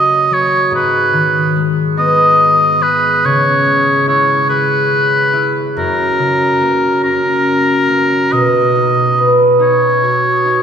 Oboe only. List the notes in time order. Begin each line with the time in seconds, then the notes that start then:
Already playing: D#5
0.33 C#5
0.75 B4
1.99 D#5
2.82 B4
3.25 C#5
4.08 C#5
4.50 B4
5.78 A#4
7.04 A#4
8.32 D#5
9.62 C#5